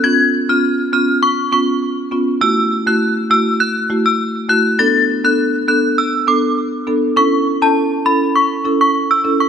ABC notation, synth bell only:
X:1
M:4/4
L:1/16
Q:1/4=101
K:Amix
V:1 name="Synth bell"
^g'2 z ^e' z2 e' z c' z c' z4 z | e'2 z f' z2 e' z f' z2 e' z2 f' z | a'2 z f' z2 f' z e' z d' z4 z | c' z2 a z2 b z c' z2 c' z e' z c' |]